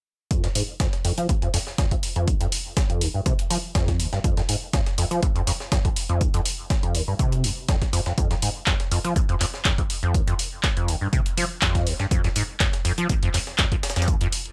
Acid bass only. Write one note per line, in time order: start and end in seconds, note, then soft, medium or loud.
0.31 0.42 F2 medium
0.44 0.48 F2 loud
0.55 0.63 G#2 medium
0.80 0.87 F2 medium
1.05 1.12 F2 loud
1.18 1.27 F3 medium
1.29 1.34 D#2 medium
1.42 1.49 F2 loud
1.54 1.58 F2 medium
1.78 1.86 F2 medium
1.91 1.95 F2 medium
2.16 2.29 F2 loud
2.28 2.35 D#2 medium
2.41 2.47 F2 loud
2.90 3.03 F2 medium
3.01 3.08 D#2 medium
3.14 3.21 G2 medium
3.26 3.33 C3 medium
3.50 3.58 F3 medium
3.75 4.01 F2 medium
4.00 4.07 D#2 medium
4.13 4.19 G2 medium
4.24 4.35 F2 medium
4.37 4.41 F2 loud
4.49 4.56 G#2 medium
4.73 4.81 F2 medium
4.98 5.05 F2 loud
5.11 5.21 F3 medium
5.23 5.27 D#2 medium
5.35 5.42 F2 loud
5.47 5.51 F2 loud
5.72 5.79 F2 medium
5.85 5.89 F2 medium
6.09 6.22 F2 loud
6.21 6.28 D#2 medium
6.34 6.40 F2 loud
6.83 6.96 F2 medium
6.95 7.02 D#2 medium
7.08 7.14 G2 medium
7.19 7.45 C3 loud
7.44 7.51 F2 medium
7.68 7.76 F2 medium
7.93 8.00 F2 loud
8.06 8.12 F2 medium
8.18 8.28 F2 medium
8.31 8.34 F2 loud
8.42 8.49 G#2 medium
8.67 8.74 F2 medium
8.91 8.99 F2 loud
9.04 9.14 F3 loud
9.16 9.20 D#2 medium
9.29 9.35 F2 loud
9.41 9.45 F2 loud
9.65 9.72 F2 medium
9.78 9.82 F2 medium
10.03 10.16 F2 loud
10.14 10.22 D#2 medium
10.27 10.34 F2 loud
10.77 10.90 F2 medium
10.88 10.95 D#2 medium
11.01 11.08 G2 medium
11.13 11.20 C3 loud
11.37 11.45 F3 medium
11.62 11.88 F2 medium
11.87 11.94 D#2 medium
12.00 12.06 G2 medium
12.11 12.22 F2 medium
12.24 12.28 F2 loud
12.36 12.43 G#2 medium
12.60 12.68 F2 medium
12.85 12.92 F2 loud
12.98 13.07 F3 loud
13.09 13.14 D#2 medium
13.22 13.29 F2 loud
13.34 13.38 F2 loud
13.59 13.66 F2 medium
13.72 13.76 F2 medium
13.96 14.09 F2 medium
14.08 14.15 D#2 medium
14.21 14.27 F2 loud